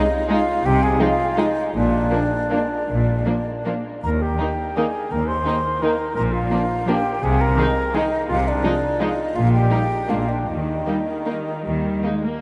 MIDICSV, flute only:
0, 0, Header, 1, 2, 480
1, 0, Start_track
1, 0, Key_signature, -3, "major"
1, 0, Tempo, 362757
1, 857, Time_signature, 3, 2, 24, 8
1, 2312, Tempo, 378310
1, 6152, Tempo, 352319
1, 12872, Tempo, 392157
1, 16184, End_track
2, 0, Start_track
2, 0, Title_t, "Flute"
2, 0, Program_c, 0, 73
2, 0, Note_on_c, 0, 75, 94
2, 394, Note_off_c, 0, 75, 0
2, 414, Note_on_c, 0, 77, 97
2, 873, Note_on_c, 0, 79, 103
2, 893, Note_off_c, 0, 77, 0
2, 1098, Note_on_c, 0, 80, 89
2, 1118, Note_off_c, 0, 79, 0
2, 1332, Note_on_c, 0, 77, 94
2, 1352, Note_off_c, 0, 80, 0
2, 1843, Note_on_c, 0, 75, 77
2, 1863, Note_off_c, 0, 77, 0
2, 2318, Note_off_c, 0, 75, 0
2, 2324, Note_on_c, 0, 74, 78
2, 4936, Note_off_c, 0, 74, 0
2, 5216, Note_on_c, 0, 82, 76
2, 5292, Note_off_c, 0, 82, 0
2, 5428, Note_on_c, 0, 79, 65
2, 6146, Note_on_c, 0, 80, 66
2, 6166, Note_off_c, 0, 79, 0
2, 6625, Note_on_c, 0, 82, 78
2, 6646, Note_off_c, 0, 80, 0
2, 6828, Note_off_c, 0, 82, 0
2, 6836, Note_on_c, 0, 84, 67
2, 7583, Note_on_c, 0, 82, 73
2, 7603, Note_off_c, 0, 84, 0
2, 8037, Note_off_c, 0, 82, 0
2, 8045, Note_on_c, 0, 82, 86
2, 8127, Note_off_c, 0, 82, 0
2, 8282, Note_on_c, 0, 77, 75
2, 9037, Note_on_c, 0, 79, 77
2, 9057, Note_off_c, 0, 77, 0
2, 9506, Note_on_c, 0, 80, 87
2, 9526, Note_off_c, 0, 79, 0
2, 9747, Note_on_c, 0, 82, 80
2, 9768, Note_off_c, 0, 80, 0
2, 10476, Note_on_c, 0, 75, 79
2, 10496, Note_off_c, 0, 82, 0
2, 10937, Note_off_c, 0, 75, 0
2, 10950, Note_on_c, 0, 77, 91
2, 11202, Note_on_c, 0, 74, 77
2, 11222, Note_off_c, 0, 77, 0
2, 11934, Note_on_c, 0, 75, 66
2, 11954, Note_off_c, 0, 74, 0
2, 12398, Note_on_c, 0, 77, 80
2, 12419, Note_off_c, 0, 75, 0
2, 12626, Note_off_c, 0, 77, 0
2, 12631, Note_on_c, 0, 79, 72
2, 13354, Note_on_c, 0, 77, 62
2, 13373, Note_off_c, 0, 79, 0
2, 13583, Note_on_c, 0, 74, 51
2, 13602, Note_off_c, 0, 77, 0
2, 13811, Note_on_c, 0, 75, 58
2, 13829, Note_off_c, 0, 74, 0
2, 16184, Note_off_c, 0, 75, 0
2, 16184, End_track
0, 0, End_of_file